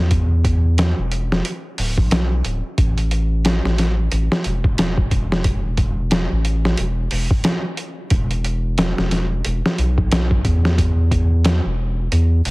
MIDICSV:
0, 0, Header, 1, 3, 480
1, 0, Start_track
1, 0, Tempo, 666667
1, 81, Time_signature, 4, 2, 24, 8
1, 9004, End_track
2, 0, Start_track
2, 0, Title_t, "Sub bass"
2, 0, Program_c, 0, 38
2, 0, Note_on_c, 0, 40, 96
2, 676, Note_off_c, 0, 40, 0
2, 703, Note_on_c, 0, 28, 91
2, 1023, Note_off_c, 0, 28, 0
2, 1282, Note_on_c, 0, 26, 80
2, 1423, Note_on_c, 0, 35, 84
2, 1434, Note_off_c, 0, 26, 0
2, 1743, Note_off_c, 0, 35, 0
2, 1759, Note_on_c, 0, 26, 80
2, 1885, Note_off_c, 0, 26, 0
2, 2003, Note_on_c, 0, 33, 108
2, 2596, Note_off_c, 0, 33, 0
2, 2622, Note_on_c, 0, 33, 90
2, 2942, Note_off_c, 0, 33, 0
2, 2963, Note_on_c, 0, 33, 106
2, 3087, Note_off_c, 0, 33, 0
2, 3204, Note_on_c, 0, 28, 90
2, 3664, Note_off_c, 0, 28, 0
2, 3684, Note_on_c, 0, 28, 91
2, 4517, Note_off_c, 0, 28, 0
2, 4545, Note_on_c, 0, 33, 97
2, 4864, Note_off_c, 0, 33, 0
2, 4882, Note_on_c, 0, 28, 99
2, 5098, Note_off_c, 0, 28, 0
2, 5120, Note_on_c, 0, 28, 86
2, 5245, Note_off_c, 0, 28, 0
2, 5839, Note_on_c, 0, 28, 107
2, 6435, Note_off_c, 0, 28, 0
2, 6466, Note_on_c, 0, 28, 96
2, 6784, Note_off_c, 0, 28, 0
2, 6805, Note_on_c, 0, 28, 98
2, 6927, Note_off_c, 0, 28, 0
2, 7042, Note_on_c, 0, 35, 86
2, 7503, Note_off_c, 0, 35, 0
2, 7523, Note_on_c, 0, 40, 90
2, 8356, Note_off_c, 0, 40, 0
2, 8385, Note_on_c, 0, 28, 98
2, 8704, Note_off_c, 0, 28, 0
2, 8723, Note_on_c, 0, 40, 100
2, 8939, Note_off_c, 0, 40, 0
2, 8965, Note_on_c, 0, 28, 98
2, 9004, Note_off_c, 0, 28, 0
2, 9004, End_track
3, 0, Start_track
3, 0, Title_t, "Drums"
3, 78, Note_on_c, 9, 42, 83
3, 80, Note_on_c, 9, 36, 106
3, 150, Note_off_c, 9, 42, 0
3, 152, Note_off_c, 9, 36, 0
3, 321, Note_on_c, 9, 36, 90
3, 322, Note_on_c, 9, 42, 70
3, 393, Note_off_c, 9, 36, 0
3, 394, Note_off_c, 9, 42, 0
3, 562, Note_on_c, 9, 42, 86
3, 568, Note_on_c, 9, 38, 111
3, 634, Note_off_c, 9, 42, 0
3, 640, Note_off_c, 9, 38, 0
3, 803, Note_on_c, 9, 42, 63
3, 875, Note_off_c, 9, 42, 0
3, 952, Note_on_c, 9, 38, 54
3, 1024, Note_off_c, 9, 38, 0
3, 1043, Note_on_c, 9, 42, 92
3, 1115, Note_off_c, 9, 42, 0
3, 1282, Note_on_c, 9, 46, 73
3, 1354, Note_off_c, 9, 46, 0
3, 1423, Note_on_c, 9, 36, 99
3, 1495, Note_off_c, 9, 36, 0
3, 1521, Note_on_c, 9, 42, 94
3, 1527, Note_on_c, 9, 38, 117
3, 1593, Note_off_c, 9, 42, 0
3, 1599, Note_off_c, 9, 38, 0
3, 1761, Note_on_c, 9, 42, 64
3, 1833, Note_off_c, 9, 42, 0
3, 2001, Note_on_c, 9, 36, 99
3, 2001, Note_on_c, 9, 42, 83
3, 2073, Note_off_c, 9, 36, 0
3, 2073, Note_off_c, 9, 42, 0
3, 2143, Note_on_c, 9, 42, 45
3, 2215, Note_off_c, 9, 42, 0
3, 2240, Note_on_c, 9, 42, 65
3, 2312, Note_off_c, 9, 42, 0
3, 2482, Note_on_c, 9, 42, 78
3, 2489, Note_on_c, 9, 38, 103
3, 2554, Note_off_c, 9, 42, 0
3, 2561, Note_off_c, 9, 38, 0
3, 2631, Note_on_c, 9, 38, 49
3, 2703, Note_off_c, 9, 38, 0
3, 2725, Note_on_c, 9, 42, 71
3, 2731, Note_on_c, 9, 38, 39
3, 2797, Note_off_c, 9, 42, 0
3, 2803, Note_off_c, 9, 38, 0
3, 2963, Note_on_c, 9, 42, 86
3, 3035, Note_off_c, 9, 42, 0
3, 3109, Note_on_c, 9, 38, 58
3, 3181, Note_off_c, 9, 38, 0
3, 3199, Note_on_c, 9, 42, 62
3, 3271, Note_off_c, 9, 42, 0
3, 3343, Note_on_c, 9, 36, 98
3, 3415, Note_off_c, 9, 36, 0
3, 3442, Note_on_c, 9, 42, 92
3, 3449, Note_on_c, 9, 38, 109
3, 3514, Note_off_c, 9, 42, 0
3, 3521, Note_off_c, 9, 38, 0
3, 3582, Note_on_c, 9, 36, 90
3, 3654, Note_off_c, 9, 36, 0
3, 3681, Note_on_c, 9, 36, 90
3, 3682, Note_on_c, 9, 42, 66
3, 3753, Note_off_c, 9, 36, 0
3, 3754, Note_off_c, 9, 42, 0
3, 3831, Note_on_c, 9, 38, 53
3, 3903, Note_off_c, 9, 38, 0
3, 3919, Note_on_c, 9, 42, 89
3, 3920, Note_on_c, 9, 36, 101
3, 3991, Note_off_c, 9, 42, 0
3, 3992, Note_off_c, 9, 36, 0
3, 4157, Note_on_c, 9, 42, 64
3, 4160, Note_on_c, 9, 36, 90
3, 4229, Note_off_c, 9, 42, 0
3, 4232, Note_off_c, 9, 36, 0
3, 4398, Note_on_c, 9, 42, 77
3, 4405, Note_on_c, 9, 38, 106
3, 4470, Note_off_c, 9, 42, 0
3, 4477, Note_off_c, 9, 38, 0
3, 4642, Note_on_c, 9, 42, 65
3, 4714, Note_off_c, 9, 42, 0
3, 4790, Note_on_c, 9, 38, 57
3, 4862, Note_off_c, 9, 38, 0
3, 4878, Note_on_c, 9, 42, 89
3, 4950, Note_off_c, 9, 42, 0
3, 5118, Note_on_c, 9, 46, 79
3, 5190, Note_off_c, 9, 46, 0
3, 5261, Note_on_c, 9, 36, 100
3, 5333, Note_off_c, 9, 36, 0
3, 5356, Note_on_c, 9, 42, 94
3, 5362, Note_on_c, 9, 38, 119
3, 5428, Note_off_c, 9, 42, 0
3, 5434, Note_off_c, 9, 38, 0
3, 5597, Note_on_c, 9, 42, 66
3, 5669, Note_off_c, 9, 42, 0
3, 5835, Note_on_c, 9, 42, 87
3, 5839, Note_on_c, 9, 36, 110
3, 5907, Note_off_c, 9, 42, 0
3, 5911, Note_off_c, 9, 36, 0
3, 5981, Note_on_c, 9, 42, 47
3, 6053, Note_off_c, 9, 42, 0
3, 6080, Note_on_c, 9, 42, 64
3, 6152, Note_off_c, 9, 42, 0
3, 6320, Note_on_c, 9, 42, 78
3, 6326, Note_on_c, 9, 38, 100
3, 6392, Note_off_c, 9, 42, 0
3, 6398, Note_off_c, 9, 38, 0
3, 6468, Note_on_c, 9, 38, 50
3, 6540, Note_off_c, 9, 38, 0
3, 6561, Note_on_c, 9, 42, 67
3, 6568, Note_on_c, 9, 38, 40
3, 6633, Note_off_c, 9, 42, 0
3, 6640, Note_off_c, 9, 38, 0
3, 6801, Note_on_c, 9, 42, 86
3, 6873, Note_off_c, 9, 42, 0
3, 6953, Note_on_c, 9, 38, 58
3, 7025, Note_off_c, 9, 38, 0
3, 7045, Note_on_c, 9, 42, 64
3, 7117, Note_off_c, 9, 42, 0
3, 7184, Note_on_c, 9, 36, 97
3, 7256, Note_off_c, 9, 36, 0
3, 7283, Note_on_c, 9, 42, 89
3, 7289, Note_on_c, 9, 38, 117
3, 7355, Note_off_c, 9, 42, 0
3, 7361, Note_off_c, 9, 38, 0
3, 7423, Note_on_c, 9, 36, 100
3, 7495, Note_off_c, 9, 36, 0
3, 7521, Note_on_c, 9, 36, 97
3, 7522, Note_on_c, 9, 42, 68
3, 7593, Note_off_c, 9, 36, 0
3, 7594, Note_off_c, 9, 42, 0
3, 7669, Note_on_c, 9, 38, 54
3, 7741, Note_off_c, 9, 38, 0
3, 7762, Note_on_c, 9, 36, 100
3, 7765, Note_on_c, 9, 42, 84
3, 7834, Note_off_c, 9, 36, 0
3, 7837, Note_off_c, 9, 42, 0
3, 8002, Note_on_c, 9, 36, 96
3, 8004, Note_on_c, 9, 42, 66
3, 8074, Note_off_c, 9, 36, 0
3, 8076, Note_off_c, 9, 42, 0
3, 8241, Note_on_c, 9, 42, 80
3, 8247, Note_on_c, 9, 38, 108
3, 8313, Note_off_c, 9, 42, 0
3, 8319, Note_off_c, 9, 38, 0
3, 8726, Note_on_c, 9, 42, 90
3, 8798, Note_off_c, 9, 42, 0
3, 8966, Note_on_c, 9, 46, 72
3, 9004, Note_off_c, 9, 46, 0
3, 9004, End_track
0, 0, End_of_file